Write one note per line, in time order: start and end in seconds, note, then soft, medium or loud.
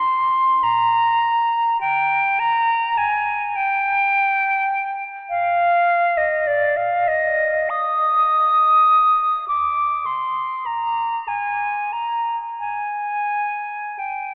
0.00 0.65 C6 medium
0.64 1.80 A#5 medium
1.81 2.41 G5 medium
2.39 2.99 A#5 medium
2.98 3.57 G#5 medium
3.56 5.03 G5 medium
5.30 6.19 F5 medium
6.18 6.48 D#5 medium
6.47 6.78 D5 medium
6.77 7.09 F5 medium
7.08 7.71 D#5 medium
7.70 9.48 D#6 loud
9.48 10.07 D6 medium
10.06 10.68 C6 medium
10.66 11.29 A#5 medium
11.28 11.94 G#5 medium
11.93 12.37 A#5 medium
12.59 14.00 G#5 medium
13.99 14.34 G5 soft